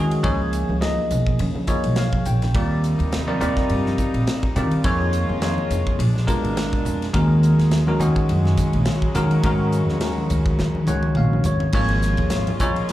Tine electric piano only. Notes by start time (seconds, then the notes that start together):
Already playing: D#3 G#3 C#4 F#4 G#4
0.23 F3 A#3 D#4 G#4 C#5
0.80 F3 A#3 D#4 G#4 D#5
1.67 F3 A#3 D#4 G#4 C#5 D#5
1.98 F5
2.26 G5
2.55 G3 C4 F4 A#4 D5
3.27 G3 C4 F4 A#4 D5
3.40 G3 C4 F4 A#4 D5
4.56 G3 C4 F4 A#4 D5
4.84 F3 A#3 D#4 G#4 C#5
5.42 F3 A#3 D#4 G#4 C#5
6.27 G#3 B3 D4 F4 A#4
7.13 D#3 G#3 C#4 F#4 A#4
7.87 D#3 G#3 C#4 F#4 A#4
8.00 D#3 G#3 C#4 F#4 G#4
9.15 D#3 G#3 C#4 F#4 A#4
9.44 D#3 G#3 C#4 F#4 A#4
10.01 D#3 G#3 C#4 F#4 A#4
10.87 D#3 G#3 C#4 F#4 C#5 F#5
11.17 F5
11.46 C#5
11.74 F3 A#3 D#4 G#4 C#5
12.60 F3 A#3 D#4 G#4 C#5